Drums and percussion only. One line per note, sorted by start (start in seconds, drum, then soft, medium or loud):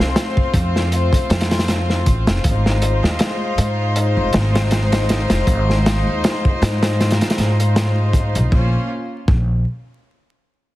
0.00 snare soft
0.16 snare loud
0.16 closed hi-hat medium
0.37 kick medium
0.54 kick loud
0.54 closed hi-hat medium
0.76 snare soft
0.92 closed hi-hat medium
1.13 kick loud
1.13 closed hi-hat medium
1.30 snare loud
1.30 closed hi-hat medium
1.41 snare medium
1.41 closed hi-hat medium
1.51 snare loud
1.51 closed hi-hat medium
1.59 snare loud
1.59 closed hi-hat medium
1.68 snare loud
1.68 closed hi-hat medium
1.90 snare soft
2.06 kick medium
2.06 closed hi-hat medium
2.27 snare loud
2.27 closed hi-hat medium
2.44 kick loud
2.44 closed hi-hat medium
2.66 snare medium
2.82 closed hi-hat medium
3.04 snare soft
3.19 snare loud
3.19 closed hi-hat medium
3.58 closed hi-hat medium
3.96 closed hi-hat medium
4.33 snare loud
4.33 closed hi-hat medium
4.55 snare loud
4.55 closed hi-hat medium
4.71 snare loud
4.71 closed hi-hat medium
4.92 snare loud
4.92 closed hi-hat medium
5.09 snare loud
5.09 closed hi-hat medium
5.30 snare loud
5.30 closed hi-hat medium
5.47 kick loud
5.47 closed hi-hat medium
5.70 snare soft
5.86 snare loud
5.86 closed hi-hat medium
6.24 snare loud
6.24 closed hi-hat medium
6.45 kick loud
6.62 snare loud
6.62 closed hi-hat medium
6.83 snare loud
6.83 closed hi-hat medium
7.01 snare medium
7.01 closed hi-hat medium
7.11 snare medium
7.11 closed hi-hat medium
7.21 snare medium
7.21 closed hi-hat medium
7.30 snare medium
7.30 closed hi-hat medium
7.38 snare medium
7.38 closed hi-hat medium
7.60 closed hi-hat medium
7.76 snare loud
7.76 closed hi-hat medium
8.13 kick medium
8.13 closed hi-hat medium
8.35 closed hi-hat soft
8.52 kick loud
9.28 kick loud